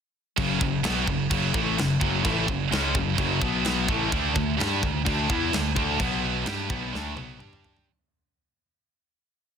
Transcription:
0.38 tine electric piano F#1, distorted electric guitar F#2 C#3 F#3, kick, crash
0.61 tine electric piano F#1, distorted electric guitar F#2 C#3, kick
0.83 tine electric piano B1, distorted electric guitar B2 F#3 B3, snare, crash
1.07 tine electric piano F#1, distorted electric guitar F#2 C#3, kick
1.30 tine electric piano F#1, distorted electric guitar F#2 C#3 F#3, kick, crash
1.54 tine electric piano A1, distorted electric guitar A2 E3 A3, kick
1.78 tine electric piano F#1, distorted electric guitar F#2 C#3, snare, crash
2.00 tine electric piano F#1, distorted electric guitar F#2 C#3 F#3, kick
2.24 tine electric piano A1, distorted electric guitar A2 E3 A3, kick, crash
2.47 distorted electric guitar F#2 C#3, kick
2.71 tine electric piano C#2, distorted electric guitar C#3 G#3 C#4, snare, crash
2.95 tine electric piano F#1, distorted electric guitar F#2 C#3, kick
3.18 tine electric piano F#1, distorted electric guitar F#2 C#3 F#3, kick, crash
3.41 tine electric piano B1, distorted electric guitar B2 F#3 B3, kick
3.65 snare, crash
3.88 tine electric piano A1, distorted electric guitar A2 E3 A3, kick
4.12 tine electric piano D2, distorted electric guitar D3 A3 D4, kick, crash
4.34 tine electric piano D2, distorted electric guitar D3 A3, kick
4.57 tine electric piano G2, distorted electric guitar G3 D4 G4, crash
4.61 snare
4.82 tine electric piano D2, distorted electric guitar D3 A3, kick
5.05 tine electric piano D2, distorted electric guitar D3 A3 D4, kick, crash
5.29 tine electric piano E2, distorted electric guitar E3 B3 E4, kick
5.52 tine electric piano D2, distorted electric guitar D3 A3, snare, crash
5.75 tine electric piano D2, distorted electric guitar D3 A3 D4, kick
6.00 tine electric piano B1, distorted electric guitar B2 F#3 B3, kick, crash
6.46 tine electric piano G2, distorted electric guitar G3 D4 G4, snare, crash
6.70 tine electric piano B1, distorted electric guitar B2 F#3 B3, kick
6.93 tine electric piano D2, distorted electric guitar D3 A3 D4, snare
7.16 tine electric piano B1, distorted electric guitar B2 F#3 B3, high tom
7.39 tine electric piano G2, distorted electric guitar G3 D4 G4, mid tom
7.53 mid tom
7.64 floor tom
7.77 floor tom

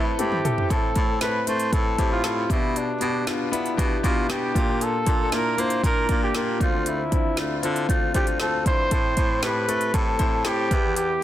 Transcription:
Already playing: baritone saxophone A2, grand piano A2 C4 E4 A4 B4
0.19 baritone saxophone G2, grand piano C4 E4 A4, trumpet G4, closed hi-hat, high tom
0.32 mid tom
0.45 grand piano C4 E4 A4, closed hi-hat, mid tom
0.58 floor tom
0.70 baritone saxophone A2, grand piano A2 C4 E4 A4, trumpet A4, kick, closed hi-hat
0.95 baritone saxophone A2, grand piano C4 E4 A4, kick, closed hi-hat
1.21 baritone saxophone A2, grand piano C4 E4 A4, trumpet B4, snare, closed hi-hat
1.47 baritone saxophone A3, grand piano C4 E4 B4, trumpet C5, closed hi-hat
1.60 closed hi-hat
1.73 baritone saxophone A2, grand piano C4 E4 A4, trumpet A4, kick, closed hi-hat
1.98 baritone saxophone A2, grand piano C4 E4 G4, kick, closed hi-hat
2.12 trumpet F4
2.23 baritone saxophone A2, grand piano C4 E4 A4, snare, closed hi-hat
2.49 grand piano B2 B3 D4 G4, baritone saxophone B2, trumpet E4, kick, closed hi-hat
2.76 trumpet D4, closed hi-hat
3.00 baritone saxophone B2, grand piano B3 D4 G4, closed hi-hat
3.27 baritone saxophone B2, grand piano B3 D4 F4, snare, closed hi-hat
3.51 grand piano B3 D4 E4, baritone saxophone B3, closed hi-hat
3.66 closed hi-hat
3.77 baritone saxophone B2, grand piano B3 D4 G4, kick, closed hi-hat
4.03 baritone saxophone B2, grand piano B3 D4 G4, trumpet F4, kick, closed hi-hat
4.29 baritone saxophone B2, grand piano B3 D4 G4, trumpet G4, snare, closed hi-hat
4.54 grand piano A#2 A#3 D4 F4, baritone saxophone A#2, kick, closed hi-hat
4.81 trumpet A4, closed hi-hat
5.06 baritone saxophone A#2, grand piano A#3 D4 F4, kick, closed hi-hat
5.32 baritone saxophone A#2, grand piano A#3 D4 E4, trumpet A#4, snare, closed hi-hat
5.57 grand piano A#3 D4 F4, baritone saxophone A#3, trumpet C5, closed hi-hat
5.70 closed hi-hat
5.83 baritone saxophone A#2, grand piano A#3 D4 F4, trumpet A#4, kick, closed hi-hat
6.08 baritone saxophone A#2, grand piano A#3 D4 F4, kick, closed hi-hat
6.23 trumpet G4
6.34 baritone saxophone A#2, grand piano A#3 D4 F4, snare, closed hi-hat
6.60 baritone saxophone D2, grand piano D3 C4 D4 F4, trumpet F4, kick, closed hi-hat
6.86 trumpet E4, closed hi-hat
7.11 grand piano C4 D4 E4, kick, closed hi-hat
7.37 baritone saxophone D2, grand piano C4 D4 F4, snare, closed hi-hat
7.63 baritone saxophone D3, grand piano C4 D4 F4, closed hi-hat
7.76 closed hi-hat
7.88 baritone saxophone D2, grand piano C4 D4 F4, kick, closed hi-hat
8.14 baritone saxophone D2, grand piano C4 D4 F4, trumpet G4, kick, closed hi-hat
8.27 closed hi-hat
8.40 baritone saxophone D2, grand piano C4 D4 F4, trumpet A4, snare, closed hi-hat
8.66 baritone saxophone G2, grand piano C4 D4 E4, trumpet C5, kick, closed hi-hat
8.91 grand piano A2 C4 E4 A4, baritone saxophone A2, kick, closed hi-hat
9.17 baritone saxophone A2, grand piano C4 E4 C5, kick, closed hi-hat
9.42 baritone saxophone A2, grand piano C4 E4 G4, trumpet B4, snare, closed hi-hat
9.68 baritone saxophone A3, grand piano C4 E4 A4, closed hi-hat
9.81 closed hi-hat
9.94 baritone saxophone A2, grand piano C4 E4 A4, trumpet A4, kick, closed hi-hat
10.19 baritone saxophone A2, grand piano C4 E4 C5, kick, closed hi-hat
10.44 baritone saxophone A2, grand piano C4 E4 A4, trumpet G4, snare, closed hi-hat
10.71 baritone saxophone E2, grand piano E3 B3 E4 G4, kick, closed hi-hat
10.96 trumpet G4, closed hi-hat

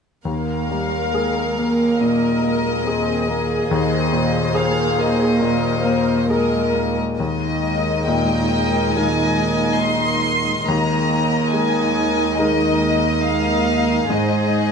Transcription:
0.25 grand piano D#2, cello section D#2, viola section A#3 A#4, violin section A#4 F5
0.70 viola section G3, grand piano A#3
1.13 viola section G#3, grand piano G#4
1.57 viola section A#3, grand piano A#3
2.00 grand piano A#2, viola section A#3 A#4, violin section D#5
2.43 viola section G#3, grand piano A#3
2.84 viola section C4 G#4, grand piano G#4
3.27 viola section A#3, grand piano A#3
3.70 cello section D#2, grand piano D#2, violin section C5 D#5
4.13 grand piano A#2
4.54 viola section G#4, grand piano G#4, violin section F5
4.98 grand piano A#3, violin section D#5
5.41 grand piano A#2, viola section A#4
5.85 grand piano A#3
6.29 viola section G#3 A#4, grand piano G#4, violin section A#4 D#5
6.74 grand piano A#3
7.18 cello section D#2, grand piano D#2, viola section G#3 D#4, violin section A#4 D#5
8.06 grand piano A#2, violin section G5
8.93 grand piano G#3 D#4 A#4, violin section G#5
9.79 violin section C6
10.68 grand piano D#2, cello section D#2, viola section G#3 D#4, violin section A#4 D#5 A#5
11.52 grand piano G#3, violin section G#5
12.39 grand piano G#3 D#4 A#4, violin section D#5
13.25 violin section F5
14.10 grand piano G#2, cello section G#2, viola section G#3 D#4, violin section G#4 C5 D#5

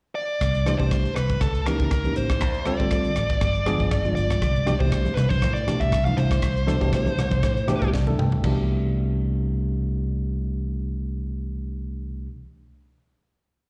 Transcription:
0.15 lead electric guitar D5
0.41 fingered electric bass C2, kick, cross-stick, closed hi-hat
0.55 closed hi-hat
0.66 tine electric piano E3 A3 D4 G4 C5, cross-stick, closed hi-hat
0.79 fingered electric bass C2, tine electric piano E3 A3 D4 G4 C5, lead electric guitar C5, kick
0.91 kick, cross-stick, closed hi-hat
1.05 closed hi-hat
1.16 fingered electric bass C2, lead electric guitar B4, cross-stick, closed hi-hat
1.30 tine electric piano G4 C5, kick, closed hi-hat
1.41 fingered electric bass C#2, tine electric piano D#4 G4, lead electric guitar A4, kick, cross-stick, closed hi-hat
1.55 closed hi-hat
1.66 tine electric piano E3 A#3 C#4 D#4 G4, lead electric guitar A#4, cross-stick, closed hi-hat
1.80 fingered electric bass C#2, kick, closed hi-hat
1.91 kick, cross-stick, closed hi-hat
2.04 tine electric piano E3 A#3 C#4 D#4 G4, closed hi-hat
2.16 fingered electric bass A1, lead electric guitar C5, closed hi-hat
2.30 kick, cross-stick, closed hi-hat
2.41 fingered electric bass D2, kick, cross-stick, closed hi-hat
2.54 closed hi-hat
2.65 tine electric piano D3 G3 C4 F4 A4, lead electric guitar D5, cross-stick, closed hi-hat
2.79 fingered electric bass D2, tine electric piano D3 G3 C4 F4 A4, kick, closed hi-hat
2.91 kick, cross-stick, closed hi-hat
3.05 closed hi-hat
3.16 fingered electric bass A1, cross-stick, closed hi-hat
3.29 tine electric piano F4 B4, kick, closed hi-hat
3.41 fingered electric bass G1, tine electric piano D4 G4, kick, cross-stick, closed hi-hat
3.55 closed hi-hat
3.66 tine electric piano F3 G#3 B3 D4 G#4, cross-stick, closed hi-hat
3.80 fingered electric bass G1, kick, closed hi-hat
3.91 kick, cross-stick, closed hi-hat
4.05 tine electric piano F3 G#3 B3 D4 F4, closed hi-hat
4.15 fingered electric bass G1, lead electric guitar D5, closed hi-hat
4.30 kick, cross-stick, closed hi-hat
4.42 fingered electric bass C2, kick, cross-stick, closed hi-hat
4.56 closed hi-hat
4.66 tine electric piano B2 E3 A3 D4 G4, cross-stick, closed hi-hat, high conga
4.80 fingered electric bass C2, tine electric piano B2 E3 A3 D4 G4, lead electric guitar C5, kick
4.92 kick, cross-stick, closed hi-hat
5.05 closed hi-hat, high conga
5.15 fingered electric bass C2, lead electric guitar B4, cross-stick, closed hi-hat, low conga
5.29 tine electric piano D4 E4, lead electric guitar C5, kick, closed hi-hat, high conga
5.42 fingered electric bass A2, tine electric piano E4, kick, cross-stick, closed hi-hat, high conga
5.54 lead electric guitar D5, closed hi-hat
5.66 tine electric piano B2 E3 A3 D4 G4, cross-stick, closed hi-hat, low conga
5.80 fingered electric bass C2, lead electric guitar E5, kick, closed hi-hat
5.92 kick, cross-stick, closed hi-hat
6.05 tine electric piano B2 E3 A3 D4 E4, lead electric guitar F5, closed hi-hat, high conga
6.17 fingered electric bass C2, lead electric guitar C5, closed hi-hat, low conga
6.31 kick, cross-stick, closed hi-hat
6.42 fingered electric bass C2, kick, cross-stick, closed hi-hat
6.57 closed hi-hat
6.67 tine electric piano B2 E3 A3 D4 A4, cross-stick, closed hi-hat, high conga
6.80 fingered electric bass C2, tine electric piano B2 E3 A3 D4 G4, kick, closed hi-hat
6.93 kick, cross-stick, closed hi-hat
7.06 closed hi-hat, high conga
7.18 fingered electric bass C2, cross-stick, closed hi-hat, low conga
7.31 tine electric piano D4 A4, kick, closed hi-hat, high conga
7.42 fingered electric bass A2, tine electric piano D4 G4, kick, cross-stick, closed hi-hat, high conga
7.57 closed hi-hat
7.67 tine electric piano B2 E3 A3 D4 G4, cross-stick, closed hi-hat, low conga
7.82 fingered electric bass C2, kick, closed hi-hat
7.93 tine electric piano D5, kick, snare
8.07 tine electric piano B2 E3 A3 D4 A4, high conga
8.19 fingered electric bass C2, tine electric piano G5, mid tom, low conga
8.32 floor tom
8.43 fingered electric bass C2, tine electric piano B2 E3 A3 D4 G4, kick, crash, high conga

